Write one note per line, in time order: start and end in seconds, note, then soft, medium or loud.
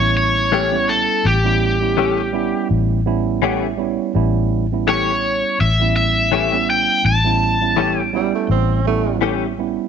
0.00 1.06 A1 loud
0.00 0.64 G3 medium
0.00 0.64 B3 medium
0.00 0.64 C#4 medium
0.00 0.65 E4 medium
0.00 0.13 C#5 loud
0.17 0.91 C#5 medium
0.52 0.75 E3 medium
0.52 0.76 A3 medium
0.52 0.76 C#4 medium
0.52 0.76 G4 medium
0.71 1.36 G3 medium
0.71 1.36 B3 medium
0.71 1.37 C#4 medium
0.71 1.37 E4 medium
0.89 1.26 A4 medium
1.25 2.52 A1 medium
1.25 2.67 G4 medium
1.44 1.77 G3 medium
1.44 1.77 B3 medium
1.44 1.77 C#4 medium
1.44 1.77 E4 medium
1.81 2.28 G3 medium
1.81 2.29 B3 medium
1.81 2.29 C#4 medium
1.81 2.29 E4 medium
1.97 2.20 E3 medium
1.97 2.21 A3 medium
1.97 2.21 C#4 medium
1.97 2.21 G4 medium
2.33 2.99 G3 loud
2.33 2.99 B3 medium
2.33 3.00 C#4 medium
2.33 3.00 E4 loud
2.71 3.97 A1 medium
3.06 3.72 G3 medium
3.06 3.72 B3 medium
3.06 3.72 C#4 medium
3.06 3.73 E4 loud
3.42 3.65 E3 medium
3.42 3.66 A3 medium
3.42 3.66 C#4 loud
3.42 3.66 G4 loud
3.42 3.61 F#5 medium
3.63 3.78 E5 medium
3.77 4.11 G3 medium
3.77 4.11 B3 medium
3.77 4.12 C#4 medium
3.77 4.12 E4 medium
3.77 4.12 C#5 medium
4.15 5.42 A1 medium
4.15 4.65 G3 loud
4.15 4.65 B3 medium
4.15 4.65 C#4 medium
4.15 4.66 E4 loud
4.72 5.68 G3 medium
4.72 5.68 B3 medium
4.72 5.68 C#4 medium
4.72 5.69 E4 medium
4.87 5.10 E3 medium
4.87 5.11 A3 medium
4.87 5.11 C#4 medium
4.87 5.11 G4 medium
4.87 5.60 C#5 medium
5.60 6.87 A1 loud
5.60 5.95 E5 medium
5.80 6.44 G3 medium
5.80 6.44 B3 medium
5.80 6.45 C#4 medium
5.80 6.45 E4 medium
5.96 6.70 E5 medium
6.32 6.55 E3 medium
6.32 6.56 A3 medium
6.32 6.56 C#4 medium
6.32 6.56 G4 medium
6.52 7.16 G3 medium
6.52 7.17 B3 medium
6.52 7.17 C#4 medium
6.52 7.17 E4 medium
6.70 7.06 G5 loud
7.05 8.31 A1 medium
7.05 8.00 A5 medium
7.24 7.57 G3 medium
7.24 7.57 B3 medium
7.24 7.57 C#4 medium
7.24 7.57 E4 medium
7.61 8.08 G3 medium
7.61 8.09 B3 medium
7.61 8.09 C#4 medium
7.61 8.09 E4 medium
7.77 8.00 E3 medium
7.77 8.00 A3 medium
7.77 8.01 C#4 medium
7.77 8.01 G4 medium
8.00 8.46 G5 medium
8.13 8.79 G3 medium
8.13 8.33 G3 medium
8.13 8.79 B3 medium
8.13 8.80 C#4 medium
8.13 8.80 E4 loud
8.35 8.49 A3 medium
8.50 9.76 A1 medium
8.50 8.85 C4 medium
8.86 9.52 G3 medium
8.86 9.22 A3 medium
8.86 9.52 B3 medium
8.86 9.52 C#4 medium
8.86 9.52 E4 medium
9.21 9.45 E3 medium
9.21 9.45 A3 medium
9.21 9.45 C#4 medium
9.21 9.46 G4 loud
9.58 9.88 G3 medium
9.58 9.88 B3 medium
9.58 9.88 C#4 medium
9.58 9.88 E4 medium